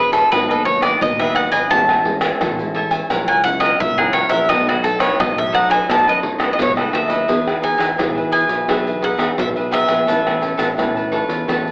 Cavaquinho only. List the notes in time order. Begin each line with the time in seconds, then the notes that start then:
Already playing: E4 G#4 C#5 E5
0.12 G#4 C#5 E5
0.31 F#4 G#4 B4 D#5
0.49 G#4 B4 D#5
0.65 muted cavaquinho stroke
0.81 G#4 B4 D#5
1.19 G#4 B4 D#5
1.35 F#4 G#4 B4 D#5
1.52 G#4 B4 D#5
1.71 A4 C#5 E5 G#5
1.90 C#5 E5 G#5
2.06 muted cavaquinho stroke
2.22 C#5 E5 G#5
2.41 A4 C#5 E5 G#5
2.74 A4 C#5 E5 G#5
2.91 C#5 E5 G#5
3.10 E4 A#4 C#5 F#5
3.29 A#4 C#5 F#5
3.44 muted cavaquinho stroke
3.61 A#4 C#5 F#5
3.98 A#4 C#5 F#5
4.13 E4 A#4 C#5 F#5
4.29 A#4 C#5 F#5
4.49 D#4 A4 B4 D#5
4.67 A4 B4 D#5
4.83 muted cavaquinho stroke
4.99 A4 B4 D#5
5.18 D#4 A4 B4 D#5
5.52 D#4 A4 B4 D#5
5.69 A4 B4 D#5
5.89 D#4 A4 B4 D#5
6.07 A4 B4 D#5
6.22 muted cavaquinho stroke
6.38 A4 B4 D#5
6.76 A4 B4 D#5
6.92 D#4 A4 B4 D#5
7.08 A4 B4 D#5
7.28 G#4 B4 E5
7.61 D#4 G#4 B4 E5
7.77 D#4 G#4 B4 E5
7.97 D#4 G#4 B4 E5
8.15 G#4 B4 E5
8.31 G#4 B4 E5
8.68 G#4 B4 E5
9.02 D#4 G#4 B4 E5
9.18 D#4 G#4 B4 E5
9.56 G#4 B4 E5
9.71 D#4 G#4 B4 E5
9.88 G#4 B4 E5
10.07 A4 B4 C#5 A5
10.41 A4 B4 C#5 A5
10.57 A4 B4 C#5 A5
10.77 A4 B4 C#5 A5
10.96 B4 C#5 A5
11.12 A4 B4 C#5 A5
11.48 A4 B4 C#5 A5